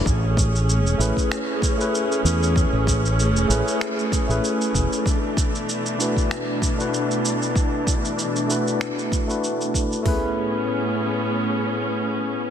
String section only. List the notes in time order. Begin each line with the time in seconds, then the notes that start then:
0.06 A3 C#4 G#4
5.06 B2 E3 D4
10.06 A2 B3 C#4 G#4